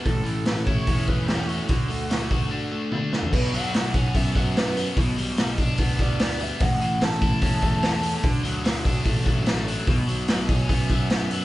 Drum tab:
CC |----------------|----------------|x---------------|----------------|
HH |o-o-o-o-o-o-o-o-|o-o-o-o---------|--o-o-o-o-o-o-o-|o-o-o-o-o-o-o-o-|
SD |----o-------o---|----o---------o-|----o-------o---|----o-------o---|
T1 |----------------|------------o---|----------------|----------------|
FT |----------------|---------------o|----------------|----------------|
BD |o-----o-o-o-----|o-----o---------|o-----o-o-o-----|o-----o-o-o-----|

CC |----------------|----------------|----------------|
HH |o-o-o-o-o-o-o-o-|o-o-o-o-o-o-o-o-|o-o-o-o-o-o-o-o-|
SD |----o-------o---|----o-------o---|----o-------o---|
T1 |----------------|----------------|----------------|
FT |----------------|----------------|----------------|
BD |o-----o-o-o-----|o-----o-o-o-----|o-----o-o-o-----|